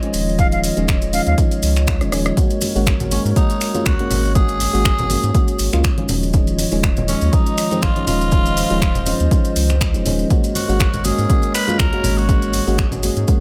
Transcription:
Already playing: G#3 F4 C#5 D#5
0.02 D#3 F3 G#3 C#4, closed hi-hat
0.13 D#1, open hi-hat, maracas
0.29 maracas
0.38 D#3 F3 G#3 C#4 F5, kick, closed hi-hat, maracas
0.52 F5, closed hi-hat, maracas
0.64 open hi-hat, maracas
0.77 D#1 D#3 F3 G#3 C#4, closed hi-hat, maracas
0.88 finger snap, kick, closed hi-hat, maracas
1.02 closed hi-hat, maracas
1.13 D#3 F3 G#3 C#4 F5, open hi-hat, maracas
1.27 D#2 F5, closed hi-hat, maracas
1.37 D#3 F3 G#3 C#4, kick, closed hi-hat, maracas
1.51 closed hi-hat, maracas
1.63 C#2, open hi-hat, maracas
1.76 finger snap, closed hi-hat, maracas
1.87 finger snap, kick, closed hi-hat, maracas
2.00 D#1 D#3 F3 G#3 C#4, cross-stick, closed hi-hat, maracas
2.12 D#3 F3 G#3 C#4, cross-stick, open hi-hat, maracas
2.26 cross-stick, closed hi-hat, maracas
2.37 G#3 A#3 C#4 F#4 A#4, kick, closed hi-hat, maracas
2.50 closed hi-hat, maracas
2.61 open hi-hat, high conga, maracas
2.75 G#1 G#3 A#3 C#4 F#4, maracas
2.86 finger snap, kick, closed hi-hat, maracas
3.00 closed hi-hat, low conga, maracas
3.11 G#3 A#3 C#4 F#4, open hi-hat, high conga, maracas
3.25 G#2, maracas
3.36 G#3 A#3 C#4 D#4 F#4, kick, closed hi-hat, maracas
3.50 closed hi-hat, maracas
3.61 finger snap, open hi-hat, maracas
3.74 G#3 A#3 C#4 F4, closed hi-hat, high conga, maracas
3.86 C#2 F#4, finger snap, kick, closed hi-hat, maracas
3.99 G#3 A#3 C#4 F#4, closed hi-hat, high conga
4.11 G#1, open hi-hat, low conga, maracas
4.25 maracas
4.35 G#3 A#3 C#4 F#4 G#4, kick, closed hi-hat, maracas
4.48 closed hi-hat, maracas
4.60 open hi-hat, high conga, maracas
4.73 G#1 G#3 A#3 C#4 F#4, maracas
4.85 finger snap, kick, closed hi-hat, maracas
4.98 closed hi-hat, low conga, maracas
5.09 G#3 A#3 C#4 F#4, open hi-hat, high conga, maracas
5.23 G#2, closed hi-hat, maracas
5.34 G#3 A#3 C#4 F#4, kick, closed hi-hat, maracas
5.48 closed hi-hat, maracas
5.59 G#1, open hi-hat, maracas
5.72 C#2 G#3 A#3 C#4 F4, finger snap, closed hi-hat, high conga, maracas
5.84 finger snap, kick, closed hi-hat, maracas
5.97 D#3 F3 G#3 C#4, closed hi-hat, high conga
6.09 D#1 G#3 F4 C#5 D#5, open hi-hat, low conga, maracas
6.23 maracas
6.33 D#3 F3 G#3 C#4, kick, closed hi-hat, maracas
6.47 closed hi-hat, maracas
6.58 open hi-hat, high conga, maracas
6.71 D#1 D#3 F3 G#3 C#4, maracas
6.83 finger snap, kick, closed hi-hat, maracas
6.96 closed hi-hat, low conga, maracas
7.08 D#3 F3 G#3 C#4, open hi-hat, high conga, maracas
7.21 D#2, maracas
7.32 D#3 F3 G#3 C#4 D#4, kick, closed hi-hat, maracas
7.46 closed hi-hat, maracas
7.58 finger snap, open hi-hat, maracas
7.71 D#3 F3 G#3 C4, closed hi-hat, high conga, maracas
7.82 G#1 F4, finger snap, kick, closed hi-hat, maracas
7.96 D#3 F3 G#3 C#4, closed hi-hat, high conga
8.07 D#1 F4 C5, open hi-hat, low conga, maracas
8.21 maracas
8.31 D#3 F3 G#3 C#4, kick, closed hi-hat, maracas
8.46 closed hi-hat, maracas
8.57 open hi-hat, high conga, maracas
8.70 D#1 D#3 F3 G#3 C#4, maracas
8.82 finger snap, kick, closed hi-hat, maracas
8.95 closed hi-hat, low conga, maracas
9.06 D#3 F3 G#3 C#4, open hi-hat, high conga, maracas
9.20 D#2, closed hi-hat, maracas
9.31 D#3 F3 G#3 C#4, kick, closed hi-hat, maracas
9.45 closed hi-hat, maracas
9.56 C#2, open hi-hat, maracas
9.69 finger snap, closed hi-hat, high conga, maracas
9.81 finger snap, kick, closed hi-hat, maracas
9.94 D#1 D#3 F3 G#3 C#4, closed hi-hat, high conga, maracas
10.05 D#3 F3 G#3 C#4, open hi-hat, low conga, maracas
10.19 maracas
10.30 G#3 A#3 C#4 F#4 A#4 C#5, kick, closed hi-hat, maracas
10.44 closed hi-hat, maracas
10.55 F#4, open hi-hat, high conga, maracas
10.68 G#1 G#3 A#3 C#4 F#4, maracas
10.79 finger snap, kick, closed hi-hat, maracas
10.94 closed hi-hat, low conga, maracas
11.04 G#3 A#3 C#4 F#4 G#4, open hi-hat, high conga, maracas
11.18 G#2, maracas
11.29 G#3 A#3 C#4 F#4, kick, closed hi-hat, maracas
11.42 closed hi-hat, maracas
11.54 B4, finger snap, open hi-hat, maracas
11.67 G#3 A#3 C#4 F4, closed hi-hat, high conga, maracas
11.79 C#2 A#4, finger snap, kick, closed hi-hat, maracas
11.92 G#3 A#3 C#4 F#4, closed hi-hat, high conga
12.03 G#1, open hi-hat, low conga, maracas
12.18 F#4, maracas
12.28 G#3 A#3 C#4 F#4 G#4, kick, closed hi-hat, maracas
12.42 closed hi-hat, maracas
12.53 open hi-hat, high conga, maracas
12.67 G#1 G#3 A#3 C#4 F#4, maracas
12.78 finger snap, kick, closed hi-hat, maracas
12.91 closed hi-hat, low conga, maracas
13.03 G#3 A#3 C#4 F#4, open hi-hat, high conga, maracas
13.16 G#2, closed hi-hat, maracas
13.27 G#3 A#3 C#4 F#4, kick, closed hi-hat, maracas

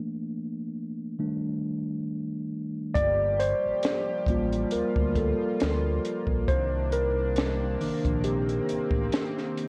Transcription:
Already playing: E3 A3 A#3 D4
1.19 D#3 G3 A3 D4
2.94 G1 F3 G3 A#3 G4 D5, kick, closed hi-hat
3.40 C5, closed hi-hat
3.66 A1
3.83 snare, closed hi-hat
4.26 A1 G3 A#3, kick, closed hi-hat
4.30 F4
4.52 closed hi-hat
4.71 D2 F4 A#4, closed hi-hat
4.96 D2, kick
5.15 A4, kick, closed hi-hat
5.60 D2, snare, closed hi-hat
6.05 closed hi-hat
6.27 A#1, kick
6.48 C2 C3 D#3 D4 C5, kick, closed hi-hat
6.92 A#4, closed hi-hat
7.36 snare, closed hi-hat
7.81 A#1 D#3 A#3 D4, open hi-hat
8.05 A#1, kick, closed hi-hat
8.24 C4 G4, closed hi-hat
8.49 closed hi-hat
8.69 A1, closed hi-hat
8.91 A1, kick
9.12 snare, closed hi-hat
9.38 snare
9.57 closed hi-hat

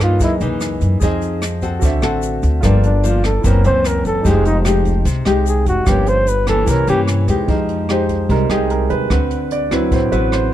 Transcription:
Already playing: G2 F4 A4 A#4 C#5
0.00 E3 A#3 D#4 F4, kick, cross-stick, closed hi-hat, shaker
0.19 F#2 G#4 A#4, kick, closed hi-hat, shaker
0.23 E4 D#5
0.41 C#2 E3 A#3 D#4, closed hi-hat, shaker
0.61 cross-stick, closed hi-hat, shaker
0.81 F#2, kick, closed hi-hat, shaker
1.00 F2 F3 C4 D#4 G#4 C5, kick, closed hi-hat, shaker
1.04 D#5
1.22 closed hi-hat, shaker
1.42 cross-stick, closed hi-hat, shaker
1.62 C4 F#4 A4, kick, closed hi-hat, shaker
1.79 D2 D3 F#4 A4 C5, kick, closed hi-hat, shaker
1.85 E5
2.02 A1 C4 F#4 A4, cross-stick, closed hi-hat, shaker
2.22 closed hi-hat, shaker
2.43 D2, kick, closed hi-hat, shaker
2.61 G1 G2 F3 A#3 D4 F4 A4 A#4, kick, cross-stick, closed hi-hat, shaker
2.66 D5
2.83 D4, closed hi-hat, shaker
3.03 F3 A#3 D4 F4, closed hi-hat, shaker
3.24 A4, kick, cross-stick, closed hi-hat, shaker
3.41 F#1 F#2 E3 E4 A#4, kick, closed hi-hat, shaker
3.45 A#3 C4 C#4 A#4 C5
3.64 C#2 E3 A#3 C4 C5, closed hi-hat, shaker
3.85 A#4, cross-stick, closed hi-hat, shaker
4.05 F#1 A4, kick, closed hi-hat, shaker
4.21 F1 F3 D#4 G4, kick, closed hi-hat, shaker
4.26 G#3 D#4 G4 G#4 C5
4.45 D#4, closed hi-hat, shaker
4.65 G#3 D#4 G4, cross-stick, closed hi-hat, shaker
4.85 kick, closed hi-hat, shaker
5.05 C2 C3, kick, closed hi-hat, shaker
5.25 C2 G#3 D#4 G4, cross-stick, closed hi-hat, shaker
5.45 G#4, closed hi-hat, shaker
5.66 F1 F#4, kick, closed hi-hat, shaker
5.84 G1 G2 F3 A#3 C#4 F4 G4, kick, cross-stick, closed hi-hat, shaker
5.89 G4 A#4 C#5
6.06 C5, closed hi-hat, shaker
6.27 B4, closed hi-hat, shaker
6.47 E3 A#3 C#4 A4, kick, cross-stick, closed hi-hat, shaker
6.65 C2 C3 E4 G4, kick, closed hi-hat, shaker
6.69 A#4 C#5
6.87 G2 E3 A#3 C#4 G4, closed hi-hat, shaker
7.08 cross-stick, closed hi-hat, shaker
7.28 E2 G#3 D#4 G4, kick, closed hi-hat, shaker
7.48 F2 F3 G#3 D#4, kick, closed hi-hat
7.69 closed hi-hat
7.89 G#3 D#4 G4 C5, cross-stick, closed hi-hat
8.09 kick, closed hi-hat
8.29 C2 C3 G3 G#3 D#4 A#4, kick, closed hi-hat
8.49 C2 G#3 D#4 G4 G#4, cross-stick, closed hi-hat
8.70 A#4, closed hi-hat
8.90 D#2 B4, kick, closed hi-hat
9.10 D2 D3 C4 F#4 B4, kick, cross-stick, closed hi-hat
9.31 closed hi-hat
9.51 D5, closed hi-hat
9.71 F#3 C4 E4 F#4 B4, kick, cross-stick, closed hi-hat
9.91 A1 A2 C5, kick, closed hi-hat
10.12 A1 C4 F#4 B4, closed hi-hat
10.32 C5, cross-stick, closed hi-hat

